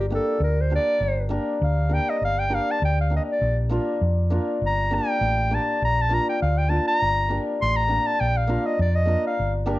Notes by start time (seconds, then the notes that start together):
Already playing: G1
0.00 G4
0.10 A#3 D4 G4 A#4
0.15 A4
0.40 D2 A#4
0.61 C5
0.70 A#3 D4 G4 A#4
0.75 D5
1.00 G1
1.29 A#3 D4 G4 A#4
1.61 D2 F5
1.89 A#3 D4 G4 A#4
1.94 G5
2.10 D#5
2.21 G1 F5
2.39 G5
2.50 A#3 D4 G4 A#4
2.54 F5
2.71 A5
2.82 D2 G5
3.01 F5
3.10 A#3 D4 G4 A#4
3.17 D#5
3.32 D5
3.41 A#1
3.69 A#3 D4 F4 A#4
4.01 F2
4.30 A#3 D4 F4 A#4
4.61 G1
4.66 A#5
4.91 A#3 D4 G4 A#4 G5
5.21 A1
5.51 A#3 D4 G4 A#4 A5
5.82 A#1 A#5
6.01 A5
6.09 A#3 D4 F4 A#4
6.14 A#5
6.29 G5
6.42 D2 F5
6.58 G5
6.69 A#3 D4 F4 A#4 A5
6.87 A#5
7.02 G1
7.29 A#3 D4 G4 A#4
7.62 A1 C6
7.76 A#5
7.88 A#3 D4 G4 A#4
8.06 A5
8.20 A#1 G5
8.37 F5
8.47 A#3 D4 F4 A#4
8.66 D#5
8.79 F2 D5
8.95 D#5
9.06 A#3 D4 F4 A#4
9.27 F5
9.39 G1
9.66 A#3 D4 G4 A#4